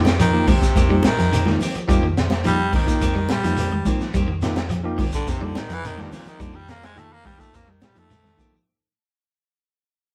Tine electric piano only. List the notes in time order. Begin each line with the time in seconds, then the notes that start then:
0.32 F3 A#3 D#4 G4
0.89 F3 A#3 D#4 G4
1.45 F3 A#3 D#4 G4
1.88 F3 A#3 D#4 G4
2.44 F3 A#3 D#4 G4
2.87 F3 A#3 D#4 G4
3.44 F3 A#3 D#4 G4
3.86 F3 A#3 D#4 G4
4.42 F3 A#3 D#4 G4
4.84 F3 A#3 D#4 G4
5.41 F3 A#3 D#4 G4
5.97 F3 A#3 D#4 G4
6.39 F3 A#3 D#4 G4
6.95 F3 A#3 D#4 G4
7.38 F3 A#3 D#4 G4
7.94 F3 A#3 D#4 G4
8.37 F3 A#3 D#4 G4